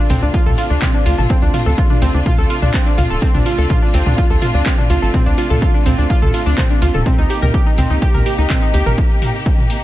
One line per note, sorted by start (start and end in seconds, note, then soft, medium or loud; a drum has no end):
0.00 9.84 C3 medium
0.00 7.02 A3 medium
0.00 7.02 D4 medium
0.00 7.02 F4 medium
0.10 0.19 D2 loud
0.10 0.22 C4 medium
0.10 mid tom loud
0.10 open hi-hat loud
0.10 shaker medium
0.22 0.30 D2 medium
0.22 0.27 D4 medium
0.22 shaker soft
0.34 0.39 F4 loud
0.34 kick loud
0.34 shaker soft
0.46 0.54 D2 medium
0.46 0.55 A4 medium
0.46 mid tom medium
0.46 shaker soft
0.58 0.63 F4 medium
0.58 open hi-hat loud
0.58 shaker medium
0.70 0.78 D2 medium
0.70 0.79 D4 medium
0.70 shaker soft
0.82 0.91 C4 medium
0.82 kick loud
0.82 clap loud
0.82 mid tom loud
0.82 shaker medium
0.94 0.99 D4 medium
0.94 shaker soft
1.06 1.15 D2 medium
1.06 1.15 F4 medium
1.06 open hi-hat loud
1.06 shaker medium
1.18 1.26 A1 medium
1.18 1.23 A4 medium
1.18 mid tom loud
1.18 shaker soft
1.30 1.35 C4 loud
1.30 kick loud
1.30 shaker medium
1.42 1.50 D2 medium
1.42 1.51 D4 medium
1.42 shaker soft
1.54 1.63 F4 medium
1.54 mid tom medium
1.54 open hi-hat loud
1.54 shaker medium
1.66 1.74 D2 medium
1.66 1.75 A4 medium
1.66 shaker soft
1.77 1.87 F4 medium
1.77 kick loud
1.77 shaker medium
1.90 1.95 D4 medium
1.90 mid tom loud
1.90 shaker soft
2.02 2.11 D2 loud
2.02 2.14 C4 medium
2.02 open hi-hat loud
2.02 shaker medium
2.14 2.22 D2 medium
2.14 2.19 D4 medium
2.14 shaker soft
2.26 2.31 F4 loud
2.26 kick loud
2.26 mid tom medium
2.26 shaker soft
2.38 2.46 D2 medium
2.38 2.47 A4 medium
2.38 shaker soft
2.50 2.55 F4 medium
2.50 open hi-hat loud
2.50 shaker medium
2.62 2.70 D2 medium
2.62 2.71 D4 medium
2.62 mid tom loud
2.62 shaker soft
2.73 2.83 C4 medium
2.73 kick loud
2.73 clap loud
2.73 shaker medium
2.86 2.91 D4 medium
2.86 shaker soft
2.98 3.07 D2 loud
2.98 3.07 F4 medium
2.98 mid tom loud
2.98 open hi-hat loud
2.98 shaker loud
3.10 3.18 D1 medium
3.10 3.15 A4 medium
3.10 shaker soft
3.21 3.27 C4 loud
3.21 kick loud
3.21 shaker medium
3.34 3.42 D2 medium
3.34 3.43 D4 medium
3.34 mid tom medium
3.34 shaker soft
3.46 3.55 F4 medium
3.46 open hi-hat loud
3.46 shaker medium
3.58 3.66 D2 medium
3.58 3.67 A4 medium
3.58 shaker soft
3.70 3.79 F4 medium
3.70 kick loud
3.70 mid tom medium
3.70 shaker medium
3.82 3.87 D4 medium
3.82 shaker soft
3.94 4.03 D2 loud
3.94 4.06 C4 medium
3.94 open hi-hat loud
3.94 shaker medium
4.06 4.14 D2 medium
4.06 4.11 D4 medium
4.06 mid tom medium
4.06 shaker soft
4.18 4.23 F4 loud
4.18 kick loud
4.18 shaker medium
4.30 4.38 D2 medium
4.30 4.39 A4 medium
4.30 shaker soft
4.42 4.47 F4 medium
4.42 mid tom medium
4.42 open hi-hat loud
4.42 shaker medium
4.54 4.63 D2 medium
4.54 4.63 D4 medium
4.54 shaker soft
4.66 4.75 C4 medium
4.66 kick loud
4.66 clap loud
4.66 shaker medium
4.78 4.83 D4 medium
4.78 mid tom medium
4.78 shaker soft
4.90 4.99 D2 medium
4.90 4.99 F4 medium
4.90 open hi-hat loud
4.90 shaker loud
5.02 5.11 A1 medium
5.02 5.07 A4 medium
5.02 shaker soft
5.14 5.19 C4 loud
5.14 kick loud
5.14 mid tom medium
5.14 shaker medium
5.26 5.35 D2 medium
5.26 5.35 D4 medium
5.26 shaker soft
5.38 5.47 F4 medium
5.38 open hi-hat loud
5.38 shaker medium
5.49 5.59 D2 medium
5.49 5.59 A4 medium
5.49 mid tom medium
5.49 shaker soft
5.62 5.71 F4 medium
5.62 kick loud
5.62 shaker medium
5.74 5.79 D4 medium
5.74 shaker soft
5.86 5.95 D2 loud
5.86 5.98 C4 medium
5.86 mid tom medium
5.86 open hi-hat loud
5.86 shaker medium
5.98 6.06 D2 medium
5.98 6.03 D4 medium
5.98 shaker soft
6.10 6.15 F4 loud
6.10 kick loud
6.10 shaker medium
6.22 6.30 D2 medium
6.22 6.31 A4 medium
6.22 mid tom medium
6.22 shaker soft
6.34 6.39 F4 medium
6.34 open hi-hat loud
6.34 shaker medium
6.46 6.54 D2 medium
6.46 6.55 D4 medium
6.46 shaker soft
6.58 6.67 C4 medium
6.58 kick loud
6.58 clap loud
6.58 mid tom medium
6.58 shaker medium
6.70 6.75 D4 medium
6.70 shaker soft
6.82 6.91 D2 medium
6.82 6.91 F4 medium
6.82 open hi-hat loud
6.82 shaker loud
6.94 7.02 D1 medium
6.94 6.99 A4 medium
6.94 mid tom medium
6.94 shaker soft
7.06 9.84 A#3 medium
7.06 7.11 C4 loud
7.06 9.84 D#4 medium
7.06 9.84 G4 medium
7.06 kick loud
7.06 mid tom medium
7.06 shaker medium
7.18 7.26 D2 medium
7.18 7.27 D#4 medium
7.18 shaker soft
7.30 7.39 G4 medium
7.30 open hi-hat loud
7.30 shaker loud
7.42 7.50 D2 medium
7.42 7.51 A#4 medium
7.42 mid tom medium
7.42 shaker soft
7.54 7.63 G4 medium
7.54 kick loud
7.54 shaker soft
7.66 7.71 D#4 medium
7.66 shaker soft
7.78 7.87 D2 loud
7.78 7.90 C4 medium
7.78 mid tom medium
7.78 open hi-hat loud
7.78 shaker loud
7.90 7.98 D2 medium
7.90 7.95 D#4 medium
7.90 shaker soft
8.01 8.07 G4 loud
8.01 kick loud
8.01 shaker medium
8.14 8.22 D2 medium
8.14 8.23 A#4 medium
8.14 mid tom medium
8.14 shaker soft
8.26 8.31 G4 medium
8.26 open hi-hat loud
8.26 shaker medium
8.38 8.46 D2 medium
8.38 8.47 D#4 medium
8.38 shaker soft
8.50 8.59 C4 medium
8.50 kick loud
8.50 clap loud
8.50 mid tom medium
8.50 shaker medium
8.62 8.67 D#4 medium
8.62 shaker soft
8.74 8.83 D2 medium
8.74 8.83 G4 medium
8.74 open hi-hat loud
8.74 shaker medium
8.86 8.94 A1 medium
8.86 8.91 A#4 medium
8.86 mid tom medium
8.86 shaker soft
8.98 kick loud
8.98 shaker soft
9.10 shaker soft
9.22 mid tom medium
9.22 open hi-hat loud
9.22 shaker medium
9.34 shaker soft
9.46 kick loud
9.46 shaker medium
9.58 mid tom medium
9.58 shaker soft
9.70 open hi-hat loud
9.70 shaker medium